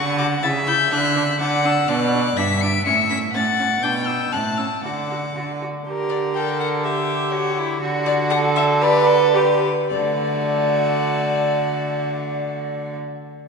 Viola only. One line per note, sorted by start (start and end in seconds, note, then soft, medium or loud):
0.18 0.26 F#4 medium
0.42 0.50 E4 medium
0.67 0.75 E4 medium
0.91 0.99 D4 loud
1.15 1.23 D4 medium
1.40 1.48 D4 medium
1.64 1.72 D4 medium
1.89 1.97 D4 medium
2.14 2.22 D4 medium
2.38 2.46 D4 medium
2.62 2.70 D4 medium
2.86 2.94 C#4 medium
3.11 3.19 C#4 medium
3.34 3.42 C#4 medium
3.59 3.67 C#4 medium
3.83 3.91 D4 medium
4.08 4.16 D4 medium
4.33 4.41 C#4 medium
4.59 4.67 C#4 medium
4.84 4.92 F#4 medium
5.10 5.18 F#4 medium
5.36 5.44 F#4 medium
5.62 5.70 F#4 medium
5.86 6.38 G4 medium
6.37 6.86 A#4 medium
6.84 7.81 G4 loud
7.82 8.33 F#4 loud
8.31 8.83 A4 loud
8.82 9.35 B4 loud
9.34 9.62 G4 loud
9.92 12.96 A3 medium